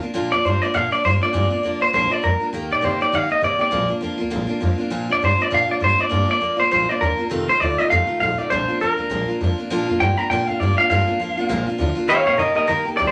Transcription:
0.01 A#3 D4 F4, muted upright bass stroke
0.14 A#1 A#2 F3 A#3 D4 F4
0.32 F2 A#3 D4 F4 D5
0.45 G2 F3 A#3 D4 F4 C5
0.62 A#3 D4 F4 D5, muted upright bass stroke
0.74 A#2 F3 A#3 D4 F4 F5
0.91 A#3 D4 F4 D5, muted upright bass stroke
1.04 G2 F3 A#3 D4 F4 C5
1.21 A#3 D4 F4 D5, muted upright bass stroke
1.33 G2 A#2 F3 A#3 D4 F4
1.50 A#3 D4 F4, muted upright bass stroke
1.63 F2 F3 A#3 D4 F4
1.80 D2 A#3 D4 F4 C5
1.93 A#1 A#2 F3 A#3 D4 F4 C5
2.10 A#3 D4 F4 D5
2.22 F2 F3 A#3 D4 F4 A#4
2.40 A#3 D4 F4, muted upright bass stroke
2.53 D#2 D#3 A#3 D#4 G4
2.70 A#2 D#4 G4 D5
2.81 C3 D#3 A#3 D#4 G4 C5
3.01 A#3 D#4 G4 D5, muted upright bass stroke
3.12 D#3 A#3 D#4 G4 F5
3.30 A#3 D#4 G4 D#5, muted upright bass stroke
3.41 C3 D#3 A#3 D#4 G4 D5
3.59 A#3 D#4 G4 D5, muted upright bass stroke
3.71 A#1 A#2 F3 A#3 D4 F4
3.88 A#3 D4 F4, muted upright bass stroke
4.01 F2 F3 A#3 D4 F4
4.18 D2 A#3 D4 F4
4.30 A#1 A#2 F3 A#3 D4 F4
4.47 A#3 D4 F4
4.60 F2 F3 A#3 D4 F4
4.78 A#3 D4 F4, muted upright bass stroke
4.90 A#1 A#2 F3 A#3 D4 F4
5.09 F2 A#3 D4 F4 D5
5.22 G2 F3 A#3 D4 F4 C5
5.38 A#3 D4 F4 D5
5.50 A#2 F3 A#3 D4 F4 F5
5.68 A#3 D4 F4 D5, muted upright bass stroke
5.80 G2 F3 A#3 D4 F4 C5
5.99 A#3 D4 F4 D5, muted upright bass stroke
6.09 G2 A#2 F3 A#3 D4 F4
6.28 A#3 D4 F4 D5, muted upright bass stroke
6.41 F2 F3 A#3 D4 F4
6.57 D2 A#3 D4 F4 C5
6.71 A#1 A#2 F3 A#3 D4 F4 C5
6.89 A#3 D4 F4 D5
7.00 D#2 F3 A#3 D4 F4 A#4
7.18 A#3 D4 F4, muted upright bass stroke
7.30 F1 F2 C3 D#3 A3 D#4 F4
7.48 C2 D#3 A3 D#4 F4 C5
7.60 D2 D#3 A3 D#4 F4 D5
7.78 D#3 A3 D#4 F4 D#5
7.90 F2 C3 D#3 A3 D#4 F4 F5
8.07 D#3 A3 D#4 F4, muted upright bass stroke
8.20 A1 D#3 A3 D#4 F4 F5
8.37 D#3 A3 D#4 F4 D5, muted upright bass stroke
8.50 A#1 A#2 F3 A#3 D4 F4 C5
8.68 A#3 D4 F4, muted upright bass stroke
8.80 F2 F3 A#3 D4 F4 A#4
8.97 D2 A#3 D4 F4
9.10 A#1 A#2 F3 A#3 D4 F4
9.28 A#3 D4 F4, muted upright bass stroke
9.41 F2 F3 A#3 D4 F4
9.58 A#3 D4 F4
9.70 A#1 A#2 F3 A#3 D4 F4
9.88 F2 A#3 D4 F4
10.00 G2 F3 A#3 D4 F4 G5
10.17 A#3 D4 F4 A#5
10.30 A#2 F3 A#3 D4 F4 G5
10.47 A#3 D4 F4 F5, muted upright bass stroke
10.60 G2 F3 A#3 D4 F4 D5
10.77 D4 F4 F5, muted upright bass stroke
10.81 A#3
10.90 G2 A#2 F3 A#3 D4 F4 F5
11.07 A#3 D4 F4, muted upright bass stroke
11.20 F2 F3 A#3 D4 F4
11.37 D2 A#3 D4 F4
11.49 A#1 A#2 F3 A#3 D4 F4
11.67 A#3 D4 F4, muted upright bass stroke
11.78 D2 F3 A#3 D4 F4
11.95 A#3 D4 F4, muted upright bass stroke
12.08 D#2 D#3 A#3 D#4 G4 C#5 F5
12.26 A#2 A#3 D#4 G4 C#5 F5
12.37 C3 D#3 A#3 D#4 G4 A#4 D#5
12.55 A#3 D#4 G4 A#4 D#5, muted upright bass stroke
12.67 D#3 A#3 D#4 G4 A#4
12.85 A#3 D#4 G4, muted upright bass stroke
12.97 C2 D#3 A#3 D#4 G4 D5
13.07 C5

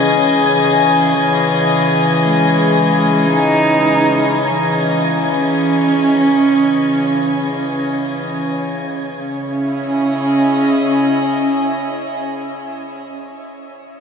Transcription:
Already playing: C#3 E3 C#4 G#4 D#5 G#6
2.24 A3
2.30 G#3
3.26 D#4
5.25 C#4
9.17 C#3 C#4
9.32 C#4
9.46 E4
9.62 G#4
9.77 D#5

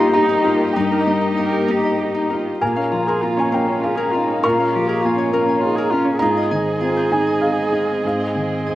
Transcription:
Already playing: G2 G3 A#3 D#4 F4 G4 A#4 D#5 A#5 C6
0.00 D#5
0.13 D#4 G4 A#5
0.29 D#4
0.44 D#4 F4 A#4
0.73 G2 D#4 G5
0.92 A#4
1.06 G3 D#5
1.22 D#4
1.37 A#3 A#4 D#5
1.52 G4
1.68 D#4 G4
1.84 D#5
2.01 D#4 G4
2.15 D#4
2.30 D#4 F4 A#4
2.61 A#2 G#3 A#3 A#4 F5 G#5
2.76 C#4 F5
2.92 F3 F4 A#5
3.07 G#4 A#4 C6
3.22 A#3 F4 A#5
3.37 C#4 C#5 G#5
3.52 A#3 C#4 A#4 G5
3.67 C#4
3.81 F4 G#4 F5
3.86 C#4
3.96 G#4 A#4
4.12 C#4 D#4 F4 F5
4.27 C#4
4.43 A#2 A#3 F4 A#4 C#6
4.58 C#4 F5
4.73 F3 F4 G4
4.88 G#4 A#4
5.02 A#3 F4 G#5
5.06 F4
5.16 C#4 C#5
5.31 A#3 C#4 A#4
5.46 C#4 G#5
5.60 F4 G#4
5.65 D#4
5.76 G#4 A#4
5.90 C#4 F4 F5
6.05 C#4
6.19 G#2 C4 D#4 F4 G#4 D#5 A#5
6.37 D#5
6.51 D#3 D#4 G#5
6.80 C4 F4 G#5
6.97 C5
7.11 D#4 G#5
7.27 G#5
7.41 G#4 F5
7.73 D#4 D#5
8.04 G#2 C4 F5
8.20 D#5
8.35 D#3 G#5
8.65 C4 G#4 D#5 G#5

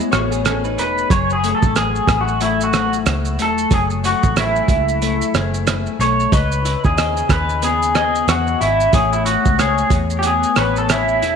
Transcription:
Already playing: A3 B3 E4 G#4 C#5
0.00 G#3 E4, shaker
0.11 A1 A3 F#4 C#5, cross-stick, closed hi-hat, shaker
0.31 B3 G#4, shaker
0.44 C#4 G#4 A4, cross-stick, closed hi-hat, shaker
0.64 D#4 B4, shaker
0.78 E1 B4, closed hi-hat, shaker
0.98 shaker
1.10 F#1 F#3 G#4 C#5, kick, closed hi-hat, shaker
1.30 G#4, shaker
1.43 A3, closed hi-hat, shaker
1.55 A4
1.63 A1, kick, shaker
1.76 G#4, cross-stick, closed hi-hat, shaker
1.96 shaker
2.08 A1 E4, kick, cross-stick, closed hi-hat, shaker
2.21 F#4
2.28 shaker
2.41 A3 E4, closed hi-hat, shaker
2.61 F#4, shaker
2.73 cross-stick, closed hi-hat, shaker
2.93 shaker
3.06 C#2 E4, cross-stick, closed hi-hat, shaker
3.25 shaker
3.39 E1 A3 A4, closed hi-hat, shaker
3.58 shaker
3.71 F#1 F#3 G#4, kick, closed hi-hat, shaker
3.90 shaker
4.03 A3 F#4, closed hi-hat, shaker
4.23 A1, kick, shaker
4.36 E4 G#4, cross-stick, closed hi-hat, shaker
4.56 shaker
4.68 C#2 E4, kick, closed hi-hat, shaker
4.89 shaker
5.02 A3, closed hi-hat, shaker
5.22 shaker
5.34 F#1 G#4, cross-stick, closed hi-hat, shaker
5.54 shaker
5.67 E4, cross-stick, closed hi-hat, shaker
5.86 shaker
5.99 B1 A3 C#5, closed hi-hat, shaker
6.20 shaker
6.32 C#2 C#3 B4 D#5, kick, closed hi-hat, shaker
6.52 shaker
6.65 E4, closed hi-hat, shaker
6.84 D#2 G#4, kick, shaker
6.97 D#5, cross-stick, closed hi-hat, shaker
7.17 shaker
7.29 D#2 G#4 B4, kick, cross-stick, closed hi-hat, shaker
7.49 shaker
7.62 B3 G#4, closed hi-hat, shaker
7.83 shaker
7.95 G#4 D#5, cross-stick, closed hi-hat, shaker
8.15 shaker
8.28 E2 F#4 G#4, cross-stick, closed hi-hat, shaker
8.47 shaker
8.61 G#1 E4, closed hi-hat, shaker
8.80 shaker
8.93 A1 A3 G#4 C#5, kick, closed hi-hat, shaker
9.13 E4, shaker
9.26 E4 F#4, closed hi-hat, shaker
9.45 C#2, kick, shaker
9.59 G#4 C#5, cross-stick, closed hi-hat, shaker
9.78 shaker
9.90 E2 G#4, kick, closed hi-hat, shaker
10.10 shaker
10.19 G4, closed hi-hat, shaker
10.24 B3 G#4
10.43 shaker
10.56 A1 B4 C#5, cross-stick, closed hi-hat, shaker
10.76 A4, shaker
10.89 E4 G#4, cross-stick, closed hi-hat, shaker
11.08 shaker
11.22 E1 E4, closed hi-hat, shaker

